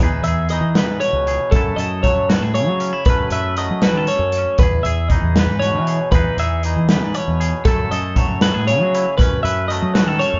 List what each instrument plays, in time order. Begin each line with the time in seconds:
Already playing: fingered electric bass E2
0.00 clean electric guitar E2 E3 D#4 G#4 B4
0.23 fingered electric bass E2, clean electric guitar E5, closed hi-hat
0.28 clean electric guitar G#4
0.49 clean electric guitar E3 D#4 D#5, closed hi-hat
0.61 fingered electric bass E3
0.75 clean electric guitar B4, snare, closed hi-hat
0.88 fingered electric bass G#2
1.00 clean electric guitar B2 C#5, closed hi-hat
1.13 fingered electric bass C#2
1.27 clean electric guitar G#4, closed hi-hat
1.51 fingered electric bass F#2, clean electric guitar F#2 F#3 A3 A4, kick, closed hi-hat
1.56 clean electric guitar E4 A4
1.76 fingered electric bass F#2, clean electric guitar A4 D#5, closed hi-hat
2.03 clean electric guitar F#3 A3 C#5, kick, closed hi-hat
2.15 fingered electric bass F#2
2.29 clean electric guitar F#4 B4, snare, closed hi-hat
2.40 fingered electric bass A2, clean electric guitar G#4
2.55 clean electric guitar C#3 C#5, closed hi-hat
2.67 fingered electric bass F#3
2.80 clean electric guitar C#4, closed hi-hat
2.93 clean electric guitar E4
3.05 fingered electric bass F#2, clean electric guitar F#2 F#3 A3 B4, kick, closed hi-hat
3.09 clean electric guitar C#4 B4
3.30 fingered electric bass F#2, clean electric guitar B4 E5, closed hi-hat
3.57 clean electric guitar F#3 A3 D#5, closed hi-hat
3.71 fingered electric bass F#3
3.82 clean electric guitar F#4 B4, snare, closed hi-hat
3.95 fingered electric bass D#3, clean electric guitar A4
4.07 clean electric guitar F#2 C#5, closed hi-hat
4.19 fingered electric bass F#2
4.32 closed hi-hat
4.38 clean electric guitar C#4
4.58 fingered electric bass E2, clean electric guitar E2 B4, kick, closed hi-hat
4.63 clean electric guitar G#4
4.83 fingered electric bass E2, clean electric guitar G#4 E5, closed hi-hat
5.09 clean electric guitar E3 D#4 D#5, kick, closed hi-hat
5.23 fingered electric bass E2
5.35 clean electric guitar B4, snare, closed hi-hat
5.46 fingered electric bass G#2
5.60 clean electric guitar B2 C#5, closed hi-hat
5.74 fingered electric bass E3
5.87 clean electric guitar G#4, closed hi-hat
6.11 fingered electric bass E2, clean electric guitar E2 E3 D#4 G#4 B4, kick, closed hi-hat
6.37 fingered electric bass E2, clean electric guitar G#4 E5, closed hi-hat
6.63 clean electric guitar E3 D#4 D#5, closed hi-hat
6.76 fingered electric bass E3
6.89 clean electric guitar B4, snare, closed hi-hat
7.02 fingered electric bass G#2
7.14 clean electric guitar B2 C#5, closed hi-hat
7.28 fingered electric bass E2
7.40 clean electric guitar G#4, closed hi-hat
7.65 fingered electric bass F#2, clean electric guitar F#2 F#3 A3 E4 A4, kick, closed hi-hat
7.91 fingered electric bass F#2, clean electric guitar A4 D#5, closed hi-hat
8.16 clean electric guitar F#3 A3 C#5, kick, closed hi-hat
8.29 fingered electric bass F#2
8.41 clean electric guitar F#4 B4, snare, closed hi-hat
8.54 fingered electric bass A2, clean electric guitar G#4
8.67 clean electric guitar C#3 C#5, closed hi-hat
8.81 fingered electric bass F#3
8.94 clean electric guitar E4, closed hi-hat
9.18 fingered electric bass F#2, clean electric guitar F#2 C#4 B4, kick, closed hi-hat
9.43 fingered electric bass F#2, clean electric guitar B4 E5, closed hi-hat
9.68 clean electric guitar F#3 A3 D#5, closed hi-hat
9.82 fingered electric bass F#3
9.94 clean electric guitar F#4 B4, snare, closed hi-hat
10.07 fingered electric bass D#3, clean electric guitar A4
10.19 clean electric guitar F#2 C#5, closed hi-hat
10.33 fingered electric bass F#2